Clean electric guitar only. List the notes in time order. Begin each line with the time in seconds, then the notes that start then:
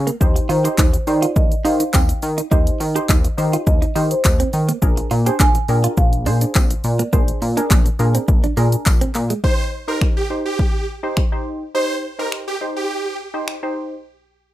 0.07 A#3
0.36 muted clean electric guitar stroke
0.49 F4
0.64 G4
0.78 D#4
0.93 muted clean electric guitar stroke
1.22 F4
1.36 muted clean electric guitar stroke
1.65 D#4
1.80 D#4
1.93 C4
2.09 muted clean electric guitar stroke
2.38 D#4
2.51 D#4
2.80 muted clean electric guitar stroke
2.96 G4
3.09 D#4
3.25 muted clean electric guitar stroke
3.53 F4
3.67 muted clean electric guitar stroke
3.82 D#4
3.96 D#4
4.40 C4
4.53 muted clean electric guitar stroke
4.69 A#3
4.98 muted clean electric guitar stroke
5.11 F4
5.27 G4
5.40 D4
5.55 muted clean electric guitar stroke
5.84 F4
5.98 muted clean electric guitar stroke
6.26 D4
6.42 D4
6.55 C4
6.71 muted clean electric guitar stroke
6.99 A#3
7.13 A#3
7.42 muted clean electric guitar stroke
7.57 D4
7.71 A#3
7.86 muted clean electric guitar stroke
8.15 C4
8.28 muted clean electric guitar stroke
8.44 D4
8.57 A#3
9.01 C4
9.15 muted clean electric guitar stroke
9.30 G#3